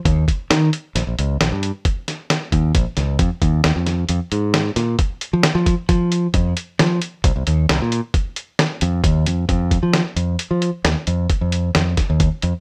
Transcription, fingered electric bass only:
\new Staff \with { instrumentName = "Fingered electric bass" } { \clef bass \time 7/4 \key f \minor \tempo 4 = 134 ees,8 r8 ees8 r8 bes,,16 bes,,16 des,8 bes,,16 g,8 r4. r16 ees,8 bes,,16 r16 des,8 | f,16 r16 ees,8 ees,16 f,8. f,16 r16 aes,4 bes,8 r8. f16 r16 f8 r16 f4 | f,8 r8 f8 r8 c,16 c,16 ees,8 c,16 bes,8 r4. r16 f,8 ees,8 f,8 | f,8. f8 r16 f,8 r16 f8 r16 ees,16 r16 f,8 r16 f,8. f,8 r16 ees,8 r16 f,16 r16 | }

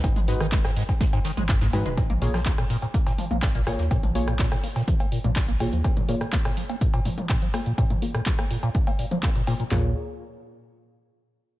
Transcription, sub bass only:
\new Staff \with { instrumentName = "Sub bass" } { \clef bass \time 4/4 \key bes \minor \tempo 4 = 124 aes,,4~ aes,,16 r4. aes,,8 ces,16 aes,16 ees,,16 | bes,,4~ bes,,16 r4. bes,,8. aes,,16 ees,16 | bes,,4~ bes,,16 r4. bes,,8. aes,,16 ees,16 | r1 |
r1 | bes,,8 r2. r8 | }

